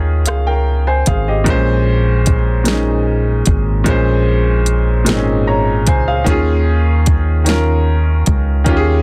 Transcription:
Already playing: D#2 D#3 C#4 F4 G#4
0.26 C#2 G#4 F5, cross-stick, closed hi-hat
0.47 A#4 G5
0.87 C5 G#5
1.06 G#1 G#4 F5, kick, closed hi-hat
1.28 G4 D#5
1.44 A#1 A#2 G#3 C#4, kick, closed hi-hat
1.50 C5
2.26 kick, closed hi-hat
2.64 A#2 G#3 C#4, closed hi-hat
2.68 D#4, snare
3.46 G#1, kick, closed hi-hat
3.84 A#1 A#2 G#3 C#4, kick, closed hi-hat
3.90 C5
4.66 closed hi-hat
5.04 G#1 A#2 G#3 C4, closed hi-hat
5.09 D#4, snare
5.15 C#4
5.47 C#5 A#5
5.87 C#2 C5 G#5, kick, closed hi-hat
6.08 G#4 F5
6.24 D#2 D#3 C#4, kick, closed hi-hat
6.28 F4 G#4
7.06 kick, closed hi-hat
7.44 D#3 C#4 F4, closed hi-hat
7.49 A#4, snare
8.26 C#2, kick, closed hi-hat
8.64 D#2 D#3 C#4 F4, kick, closed hi-hat
8.70 G4
8.77 G#4

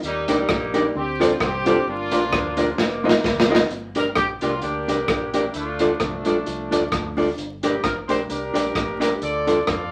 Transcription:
0.03 D#2 G3 A#3 D#4, hi-hat pedal
0.27 C2 G3 A#3 D4 D#4 G4 A#4 D5, closed hi-hat
0.49 A#1, kick, cross-stick
0.73 D4 D#4 G4 A#4 D5, closed hi-hat
0.95 D2 C4 G4, muted hollow-body jazz guitar stroke
1.20 C4 D4 F4 A4 C5 D5, cross-stick, closed hi-hat
1.40 C2 C4 F4 G4 C5, kick, cross-stick
1.65 C4 D4 F4 A4 C5 D5, closed hi-hat
1.86 G1 A#3 D4 F4
2.11 A#1 D4 F4 G4 A#4 D5, closed hi-hat
2.32 D2, kick, cross-stick
2.57 D4 F4 G4 A#4 D5, closed hi-hat
2.78 F1 A#3 D#4, muted hollow-body jazz guitar stroke, snare
3.03 C4 D#4 F4 A#4 D#5
3.09 snare
3.24 D2, kick, snare
3.40 snare
3.49 C4 D#4 F4 A#4 D#5
3.55 snare
3.70 G1, closed hi-hat
3.95 D4 G4 A#4 D5, closed hi-hat
4.15 A#1 G4, kick, cross-stick, closed hi-hat
4.41 C2 D4 F4 G4 A#4 D5, closed hi-hat
4.61 D2 A#3 D4 G4, muted hollow-body jazz guitar stroke, closed hi-hat
4.88 C2 D4 G4 A#4 D5, closed hi-hat
5.08 A#1, kick, cross-stick, closed hi-hat
5.32 D4 G4 A#4 D5, closed hi-hat
5.52 D2 A3 D4 F4, closed hi-hat
5.79 D4 F4 A4 D5, closed hi-hat
5.98 C2 F3 A3 D4, kick, cross-stick, closed hi-hat
6.25 A#1 D4 F4 A4 D5, closed hi-hat
6.46 C2, muted hollow-body jazz guitar stroke, closed hi-hat
6.71 D2 D4 F4 A4 D5, closed hi-hat
6.92 D2, kick, cross-stick, closed hi-hat
7.17 D4 F4 A4 D5, open hi-hat
7.38 G1, closed hi-hat
7.63 D4 G4 A#4 D5, closed hi-hat
7.83 A1 A#4, kick, cross-stick, closed hi-hat
8.08 A#1 D4 G4 A#4 C5 D5, closed hi-hat
8.29 C2 D4 G4 A#4, muted hollow-body jazz guitar stroke, closed hi-hat
8.54 A#1 D4 G4 A#4 D5, closed hi-hat
8.75 A1, kick, cross-stick, closed hi-hat
9.00 D4 G4 A#4 D5, cross-stick, closed hi-hat
9.22 D2 F4 A4 D5, closed hi-hat
9.47 D4 F4 A4 D5, closed hi-hat
9.67 F2 A4 D5 F5, kick, cross-stick, closed hi-hat

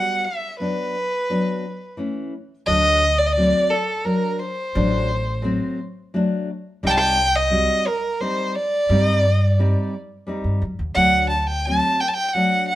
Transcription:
Already playing: G3 B3 F#4 F#5
0.25 E5
0.59 F#3 B3 D4 B4
1.30 F#3 B3 D4
1.97 E3 A3 C#4
2.66 D2 D3 F#3 A3 D#5
3.18 D5
3.26 D#5
3.32 D5
3.37 F#3 A3 C4
3.70 A4
4.05 F#3 D4 A#4
4.39 C5
4.75 A1 F#3 A3 D4
5.42 F#3 A3 C4
6.14 F#3 A3 D4
6.83 C2 G3 C4 D#4 G5
6.90 A5
6.98 G5
7.36 D#5
7.50 G3 C4 F#4
7.87 A#4
8.20 G3 C4 D#4 C5
8.55 D5
8.89 G2 G3 C4 D#4
9.59 G3 C4 D#4
10.27 G3 C4 D#4
10.44 G2
10.62 F#2
10.79 D#2
10.94 D2 F#3 A3 D4 F#5
11.30 A5
11.42 A5
11.47 G5
11.65 F#3 A3 C4 A5
12.00 G5
12.08 A5
12.14 G5
12.28 G5
12.33 F#3 A3 D4 F#5
12.68 F#5

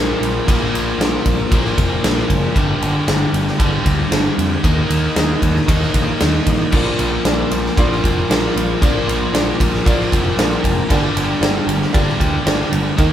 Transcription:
Already playing: A#1 A#2 F3 A#3 D4 F4 D5
0.21 A#1, ride
0.47 A#1 A#2 F3 A#3, kick, ride
0.73 A#1, ride
0.98 A#1, snare, ride
1.26 A#1, kick, ride
1.50 A#1 A#2 F3 A#3, kick, ride
1.65 snare
1.78 F1, kick, ride
2.03 A#1, snare, ride
2.30 F#1, kick, ride
2.54 G1 G2 D3 G3 A#3 F4 G4 D5, kick, ride
2.82 G1, ride
3.08 G1, snare, ride
3.33 G1, ride
3.47 snare
3.59 G1 G2 D3 G3, kick, ride
3.86 D2, kick, ride
4.12 G1, snare, ride
4.38 F2, ride
4.62 D#2 D#3 A#3 D#4 G4 D#5, kick, ride
4.66 D#4
4.89 D#2, ride
5.16 D#2, snare, ride
5.42 D#2, kick, ride
5.56 snare
5.67 D#2 D#3 A#3 D#4, kick, ride
5.82 snare
5.94 A#1, kick, ride
6.20 D#2, snare, ride
6.46 A1, kick, ride
6.71 A#1 A#2 F3 A#3 D4 F4 A#4 D5, kick, crash
6.75 A#3
6.99 A#1, ride
7.25 A#1 D4 F4 A#4 D5, snare, ride
7.51 A#1, ride
7.66 snare
7.77 A#1 A#2 F3 A#3 D4 F4 A#4 D5, kick, ride
7.92 snare
8.04 F1, kick, ride
8.29 A#1 D4 F4 A#4 D5, snare, ride
8.56 A#1, ride
8.81 A#1 A#2 F3 A#3 D4 F4 A#4 D5, kick, ride
9.07 A#1, ride
9.33 A#1 D4 F4 A#4 D5, snare, ride
9.60 A#1, kick, ride
9.74 snare
9.85 A#1 A#2 F3 A#3 D4 F4 A#4 D5, kick, ride
10.01 snare
10.12 F1, kick, ride
10.37 A#1 D4 F4 A#4 D5, snare, ride
10.64 F1, kick, ride
10.88 G1 G2 D3 G3 A#3 F4 G4 A#4 D5, kick, ride
11.16 G1, ride
11.41 G1 F4 G4 A#4 D5, snare, ride
11.67 G1, ride
11.82 snare
11.92 G1 G2 D3 F4 G4 A#4 D5, kick, ride
11.97 G3
12.08 snare
12.20 D2, kick, ride
12.46 G1 F4 G4 A#4 D5, snare, ride
12.72 G1, ride
12.97 D#2 D#3 A#3 D#4 G4 A#4 D#5, kick, ride

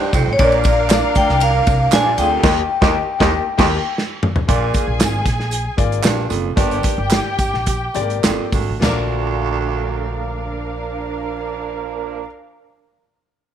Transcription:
Already playing: D#4 C5 D5 G5
0.13 C2 F2, kick, ride, tambourine
0.27 A1
0.33 C#5
0.39 A#1 A#2 A#3 D4 F4 A#4 D5 F5, kick, ride, tambourine
0.52 ride
0.64 kick, ride, tambourine
0.90 A#3 D4 F4 D5, snare, clap, ride, tambourine
1.15 D2 G5, kick, ride, tambourine
1.29 C2, snare
1.40 A#3 A#4 F5, ride, tambourine
1.67 C2, kick, ride, tambourine
1.92 A#1 G2 A#3 D4 D5 G#5, snare, clap, ride, tambourine
2.06 D4 F4
2.18 D2 F2 F4 G#4 G5, ride, tambourine
2.32 G4 A#4
2.42 D#2 A#3 D#4 G4 A#4 D#5, kick, snare, crash
2.81 D#2 A#3 D#4 G4 A#4 D#5, kick, snare
3.19 D#2 A#3 D#4 G4 A#4 D#5, kick, snare
3.57 D#2 A#3 D#4 G4 A#4 D#5, kick, snare, crash
3.98 snare
4.23 mid tom
4.36 floor tom
4.47 A#1 A#2 A#3 F4 G#4 D5 G#5, kick, closed hi-hat
4.74 kick, closed hi-hat, tambourine
4.87 A#1
5.00 G#1, snare, clap, closed hi-hat, tambourine
5.26 A#1, kick, snare, closed hi-hat, tambourine
5.40 snare
5.51 closed hi-hat, tambourine
5.77 G#1 A#3 F4 D5, kick, closed hi-hat, tambourine
5.92 closed hi-hat
6.03 A#1 G2, snare, clap, closed hi-hat, tambourine
6.29 F#1 F2, closed hi-hat, tambourine
6.56 G1 G2 A#3 G4 D5 G5, kick, closed hi-hat, tambourine
6.71 closed hi-hat
6.83 kick, closed hi-hat, tambourine
6.98 G1
7.11 snare, clap, closed hi-hat, tambourine
7.39 G#1, kick, closed hi-hat, tambourine
7.53 A#1, snare
7.66 kick, closed hi-hat, tambourine
7.94 G#1 G#3 G4 D5, closed hi-hat, tambourine
8.01 A#3
8.10 closed hi-hat
8.23 G1 F2, snare, clap, closed hi-hat, tambourine
8.52 G#1 D2, kick, open hi-hat, tambourine
8.69 A1
8.80 D2 F3 A#3 D4 F4 A#4 F5, snare, floor tom, china, tambourine
8.84 A#1 D5

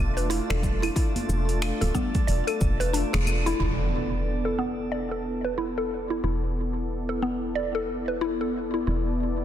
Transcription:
Already playing: E1 A3 D4 F4 A4 D5
0.17 B4, open hi-hat, shaker
0.30 E4, open hi-hat, shaker
0.50 E1 A4, finger snap, open hi-hat
0.62 kick, high conga, low conga, shaker
0.82 E4, open hi-hat, high bongo, claves, shaker
0.96 E4, kick, open hi-hat, shaker
1.16 open hi-hat, high conga, shaker
1.29 E1, high bongo, shaker
1.49 open hi-hat, shaker
1.62 finger snap, open hi-hat, claves, shaker
1.81 D1 A4, open hi-hat, high conga, shaker
1.95 B3, kick, low conga, shaker
2.14 kick, open hi-hat, high bongo, high conga, low conga, shaker
2.27 E1 D5, open hi-hat, shaker
2.47 A4, open hi-hat, claves, shaker
2.61 E1, kick, high conga, shaker
2.80 B4, open hi-hat, shaker
2.93 D4, open hi-hat, shaker
3.13 E1 G#4, finger snap, open hi-hat, shaker
3.27 high conga, claves, shaker
3.46 E4, open hi-hat, high bongo, shaker
3.60 E1 B3 E4, impact, shaker
3.80 shaker
3.93 shaker
4.13 shaker
4.26 E4, shaker
4.45 A4, shaker
4.59 B3, shaker
4.79 shaker
4.92 D5, shaker
5.11 A4
5.25 shaker
5.44 B4
5.58 E4
5.78 A4 D5
5.91 shaker
6.10 E4
6.24 E1 E4
6.57 shaker
6.77 shaker
6.90 shaker
7.09 A4
7.22 B3, shaker
7.43 shaker
7.55 D5
7.75 A4
7.89 shaker
8.08 B4
8.21 E4
8.41 A4
8.55 shaker
8.74 E4
8.87 E1 E4
9.21 shaker
9.40 shaker

